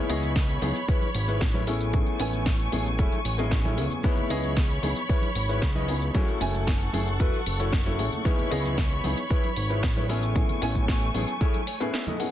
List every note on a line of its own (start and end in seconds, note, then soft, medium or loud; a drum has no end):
0.00 0.36 E4 loud
0.00 0.36 G#4 loud
0.00 0.36 B4 loud
0.00 0.36 C#5 loud
0.00 1.65 C#5 medium
0.00 1.66 B5 medium
0.00 1.63 C#6 medium
0.09 0.58 C#2 loud
0.09 0.59 B3 medium
0.09 0.59 E4 medium
0.09 0.59 G#4 loud
0.09 0.59 D#5 medium
0.09 open hi-hat loud
0.23 high conga medium
0.23 cabasa medium
0.36 kick loud
0.36 snare loud
0.36 closed hi-hat medium
0.36 cabasa medium
0.49 closed hi-hat soft
0.49 cabasa soft
0.62 0.73 C#2 loud
0.62 0.76 B3 medium
0.62 0.76 D#4 medium
0.62 0.76 E4 medium
0.62 0.77 G#4 medium
0.62 open hi-hat loud
0.62 high conga loud
0.76 closed hi-hat soft
0.76 cabasa medium
0.88 1.08 E4 medium
0.88 1.08 G#4 medium
0.88 1.08 B4 medium
0.88 1.08 C#5 loud
0.88 kick loud
0.88 closed hi-hat medium
0.88 cabasa medium
1.01 closed hi-hat soft
1.01 high conga medium
1.01 cabasa soft
1.15 1.43 G#1 medium
1.15 open hi-hat loud
1.28 1.41 E4 medium
1.28 1.41 G#4 medium
1.28 1.41 B4 medium
1.28 1.41 C#5 loud
1.28 closed hi-hat soft
1.28 cabasa medium
1.41 2.03 A1 medium
1.41 kick loud
1.41 snare loud
1.41 closed hi-hat medium
1.41 cabasa medium
1.54 1.66 E4 medium
1.54 1.66 G#4 medium
1.54 1.67 B4 medium
1.54 1.67 C#5 loud
1.54 closed hi-hat soft
1.54 high conga loud
1.54 cabasa soft
1.67 4.02 A3 medium
1.67 1.90 B3 medium
1.67 1.91 C#4 medium
1.67 2.52 E4 medium
1.67 1.91 E4 medium
1.67 2.52 G#4 medium
1.67 1.91 G#4 medium
1.67 2.52 A4 medium
1.67 2.52 C#5 loud
1.67 4.02 G#5 medium
1.67 4.02 C#6 medium
1.67 open hi-hat loud
1.80 closed hi-hat soft
1.80 cabasa medium
1.93 2.17 B3 medium
1.93 2.17 C#4 medium
1.93 2.17 E4 medium
1.93 2.17 G#4 medium
1.93 kick loud
1.93 closed hi-hat medium
1.93 high conga loud
1.93 cabasa medium
2.07 closed hi-hat soft
2.07 cabasa soft
2.20 2.69 A1 loud
2.20 2.69 B3 loud
2.20 2.69 C#4 medium
2.20 2.70 E4 medium
2.20 2.70 G#5 loud
2.20 open hi-hat loud
2.33 closed hi-hat soft
2.33 high conga medium
2.33 cabasa medium
2.46 kick loud
2.46 snare loud
2.46 closed hi-hat medium
2.46 cabasa medium
2.59 closed hi-hat soft
2.59 cabasa soft
2.72 3.00 A1 loud
2.72 2.87 B3 medium
2.72 2.87 C#4 medium
2.72 2.87 E4 medium
2.72 2.87 G#4 medium
2.72 open hi-hat loud
2.72 high conga medium
2.86 closed hi-hat soft
2.86 cabasa medium
2.99 3.10 E1 medium
2.99 3.19 E4 medium
2.99 3.19 G#4 medium
2.99 3.19 A4 medium
2.99 3.19 C#5 loud
2.99 kick loud
2.99 closed hi-hat medium
2.99 cabasa medium
3.12 closed hi-hat soft
3.12 high conga medium
3.12 cabasa soft
3.25 3.79 A1 medium
3.25 open hi-hat loud
3.38 3.61 B3 medium
3.38 3.61 C#4 medium
3.38 3.61 E4 medium
3.38 3.51 E4 medium
3.38 3.52 G#4 medium
3.38 3.61 G#4 loud
3.38 3.52 A4 medium
3.38 3.52 D#5 loud
3.38 cabasa medium
3.51 kick loud
3.51 snare loud
3.51 closed hi-hat medium
3.51 cabasa medium
3.65 3.84 E4 medium
3.65 3.85 G#4 medium
3.65 3.85 A4 medium
3.65 3.85 C#5 medium
3.65 closed hi-hat soft
3.65 high conga loud
3.65 low conga medium
3.65 cabasa soft
3.77 3.89 C#2 loud
3.77 4.01 B3 medium
3.77 4.01 C#4 medium
3.77 4.01 E4 medium
3.77 4.01 G#4 medium
3.77 open hi-hat loud
3.91 closed hi-hat soft
3.91 low conga medium
3.91 cabasa medium
4.03 4.27 B3 medium
4.03 4.27 D#4 medium
4.03 4.57 E4 loud
4.03 4.28 E4 medium
4.03 4.57 G#4 loud
4.03 4.28 G#4 medium
4.03 4.57 B4 loud
4.03 6.12 C#5 medium
4.03 4.57 C#5 loud
4.03 6.12 B5 medium
4.03 6.12 C#6 medium
4.03 kick loud
4.03 closed hi-hat medium
4.03 high conga loud
4.03 cabasa medium
4.17 closed hi-hat soft
4.17 low conga medium
4.17 cabasa soft
4.30 4.79 C#2 loud
4.30 4.80 B3 medium
4.30 4.80 E4 medium
4.30 4.80 G#4 loud
4.30 4.80 D#5 medium
4.30 open hi-hat loud
4.44 closed hi-hat soft
4.44 high conga medium
4.44 cabasa medium
4.57 kick loud
4.57 snare loud
4.57 closed hi-hat medium
4.57 cabasa medium
4.70 closed hi-hat soft
4.70 cabasa soft
4.83 4.94 C#2 loud
4.83 4.97 B3 medium
4.83 4.97 D#4 medium
4.83 4.97 E4 medium
4.83 4.98 G#4 loud
4.83 open hi-hat loud
4.83 high conga loud
4.96 closed hi-hat soft
4.96 cabasa medium
5.09 5.29 E4 medium
5.09 5.29 G#4 medium
5.09 5.29 B4 medium
5.09 5.29 C#5 loud
5.09 kick loud
5.09 closed hi-hat medium
5.09 cabasa medium
5.22 closed hi-hat soft
5.22 high conga medium
5.22 cabasa soft
5.35 5.64 G#1 medium
5.35 open hi-hat loud
5.49 5.62 E4 medium
5.49 5.62 G#4 medium
5.49 5.62 B4 medium
5.49 5.62 C#5 loud
5.49 closed hi-hat soft
5.49 cabasa medium
5.62 6.11 C#2 medium
5.62 kick loud
5.62 snare loud
5.62 closed hi-hat medium
5.62 cabasa medium
5.75 5.95 E4 medium
5.75 5.95 G#4 medium
5.75 5.95 B4 medium
5.75 5.95 D#5 medium
5.75 closed hi-hat soft
5.75 high conga medium
5.75 cabasa soft
5.88 6.11 B3 medium
5.88 6.12 D#4 medium
5.88 6.12 E4 medium
5.88 6.12 G#4 medium
5.88 open hi-hat medium
6.02 closed hi-hat soft
6.02 cabasa medium
6.14 6.38 A3 medium
6.14 6.38 C#4 medium
6.14 6.67 E4 loud
6.14 6.38 E4 medium
6.14 6.67 F#4 loud
6.14 6.38 G#4 medium
6.14 6.67 A4 loud
6.14 8.23 A4 medium
6.14 6.67 C#5 loud
6.14 8.23 F#5 medium
6.14 10.05 C#6 loud
6.14 kick loud
6.14 closed hi-hat medium
6.14 high conga medium
6.14 cabasa medium
6.28 closed hi-hat soft
6.28 cabasa soft
6.40 6.90 F#1 loud
6.40 6.90 A3 medium
6.40 6.90 C#4 medium
6.40 6.91 E4 medium
6.40 6.91 G#5 loud
6.40 open hi-hat loud
6.54 closed hi-hat soft
6.54 high conga medium
6.54 cabasa medium
6.67 kick loud
6.67 snare loud
6.67 closed hi-hat medium
6.67 cabasa medium
6.81 closed hi-hat soft
6.81 cabasa soft
6.93 7.22 F#1 loud
6.93 7.08 A3 medium
6.93 7.08 C#4 medium
6.93 7.08 E4 medium
6.93 7.08 G#4 medium
6.93 open hi-hat medium
6.93 high conga loud
7.07 closed hi-hat soft
7.07 cabasa medium
7.20 7.31 E1 medium
7.20 7.40 E4 medium
7.20 7.40 F#4 medium
7.20 7.40 A4 medium
7.20 7.40 B4 loud
7.20 kick loud
7.20 closed hi-hat medium
7.20 cabasa medium
7.33 closed hi-hat soft
7.33 high conga medium
7.33 cabasa soft
7.46 8.01 F#1 medium
7.46 open hi-hat loud
7.59 7.72 E4 medium
7.59 7.72 F#4 medium
7.59 7.73 A4 medium
7.59 7.73 C#5 loud
7.59 closed hi-hat soft
7.59 cabasa medium
7.73 kick loud
7.73 snare loud
7.73 closed hi-hat medium
7.73 cabasa medium
7.86 8.05 E4 medium
7.86 8.06 F#4 medium
7.86 8.06 A4 medium
7.86 8.06 C#5 medium
7.86 closed hi-hat soft
7.86 high conga medium
7.86 low conga medium
7.86 cabasa soft
7.98 8.10 A1 loud
7.98 8.22 A3 medium
7.98 8.22 C#4 medium
7.98 8.22 E4 medium
7.98 8.22 G#4 medium
7.98 open hi-hat medium
8.12 closed hi-hat soft
8.12 low conga medium
8.12 cabasa medium
8.25 8.48 B3 medium
8.25 8.48 D#4 medium
8.25 8.78 E4 loud
8.25 8.48 E4 medium
8.25 8.78 G#4 loud
8.25 8.49 G#4 medium
8.25 8.78 B4 loud
8.25 10.08 C#5 medium
8.25 8.78 C#5 loud
8.25 10.08 B5 medium
8.25 kick loud
8.25 closed hi-hat medium
8.25 high conga medium
8.25 cabasa medium
8.39 closed hi-hat soft
8.39 low conga medium
8.39 cabasa soft
8.51 9.01 C#2 loud
8.51 9.01 B3 medium
8.51 9.01 E4 medium
8.51 9.01 G#4 loud
8.51 9.01 D#5 medium
8.51 open hi-hat loud
8.65 closed hi-hat soft
8.65 high conga medium
8.65 cabasa medium
8.78 kick loud
8.78 snare loud
8.78 closed hi-hat medium
8.78 cabasa medium
8.91 closed hi-hat soft
8.91 cabasa soft
9.04 9.15 C#2 loud
9.04 9.18 B3 medium
9.04 9.18 D#4 medium
9.04 9.19 E4 medium
9.04 9.19 G#4 medium
9.04 open hi-hat medium
9.04 high conga loud
9.17 closed hi-hat soft
9.17 cabasa medium
9.30 9.50 E4 medium
9.30 9.50 G#4 medium
9.30 9.50 B4 medium
9.30 9.50 C#5 loud
9.30 kick loud
9.30 closed hi-hat medium
9.30 cabasa medium
9.44 closed hi-hat soft
9.44 high conga medium
9.44 cabasa soft
9.56 9.85 G#1 medium
9.56 open hi-hat loud
9.70 9.83 E4 medium
9.70 9.83 G#4 medium
9.70 9.83 B4 medium
9.70 9.83 C#5 loud
9.70 closed hi-hat soft
9.70 cabasa medium
9.83 10.45 A1 medium
9.83 kick loud
9.83 snare loud
9.83 closed hi-hat medium
9.83 cabasa medium
9.96 10.08 E4 medium
9.96 10.08 G#4 medium
9.96 10.09 B4 medium
9.96 10.09 C#5 loud
9.96 closed hi-hat soft
9.96 high conga medium
9.96 cabasa soft
10.09 12.31 A3 medium
10.09 10.32 B3 medium
10.09 10.33 C#4 medium
10.09 10.94 E4 loud
10.09 10.33 E4 medium
10.09 10.94 G#4 medium
10.09 10.33 G#4 medium
10.09 10.94 A4 medium
10.09 10.94 C#5 loud
10.09 12.31 G#5 medium
10.09 12.31 C#6 loud
10.09 open hi-hat medium
10.23 closed hi-hat soft
10.23 cabasa medium
10.35 10.59 B3 medium
10.35 10.59 C#4 medium
10.35 10.59 E4 medium
10.35 10.59 G#4 medium
10.35 kick loud
10.35 closed hi-hat medium
10.35 high conga loud
10.35 cabasa medium
10.49 closed hi-hat soft
10.49 low conga medium
10.49 cabasa soft
10.62 11.11 A1 loud
10.62 11.11 B3 medium
10.62 11.11 C#4 medium
10.62 11.12 E4 medium
10.62 11.12 G#5 loud
10.62 open hi-hat loud
10.75 kick medium
10.75 closed hi-hat soft
10.75 high conga medium
10.75 cabasa medium
10.88 kick loud
10.88 snare loud
10.88 closed hi-hat medium
10.88 cabasa medium
11.02 closed hi-hat soft
11.02 cabasa soft
11.14 11.26 A1 loud
11.14 11.29 B3 medium
11.14 11.29 C#4 medium
11.14 11.29 E4 medium
11.14 11.29 G#4 loud
11.14 open hi-hat medium
11.14 high conga medium
11.28 closed hi-hat soft
11.28 cabasa medium
11.41 11.61 E4 medium
11.41 11.61 G#4 medium
11.41 11.61 A4 medium
11.41 11.61 C#5 loud
11.41 kick loud
11.41 closed hi-hat medium
11.41 cabasa medium
11.54 closed hi-hat soft
11.54 high conga medium
11.54 cabasa soft
11.67 11.80 C#5 medium
11.67 open hi-hat loud
11.80 11.91 A2 soft
11.80 12.03 B3 medium
11.80 12.03 C#4 medium
11.80 11.93 E4 medium
11.80 12.03 E4 medium
11.80 11.94 G#4 medium
11.80 12.03 G#4 loud
11.80 11.94 A4 medium
11.80 11.93 B4 loud
11.80 closed hi-hat soft
11.80 cabasa medium
11.94 12.07 E5 medium
11.94 snare loud
11.94 closed hi-hat medium
11.94 cabasa medium
12.07 12.19 E4 medium
12.07 12.27 G#4 medium
12.07 12.27 A4 medium
12.07 12.27 D#5 medium
12.07 closed hi-hat soft
12.07 high conga medium
12.07 low conga medium
12.07 cabasa soft
12.20 12.31 B3 medium
12.20 12.31 C#4 medium
12.20 12.31 E4 medium
12.20 12.31 G#4 medium
12.20 12.31 F#5 medium
12.20 open hi-hat medium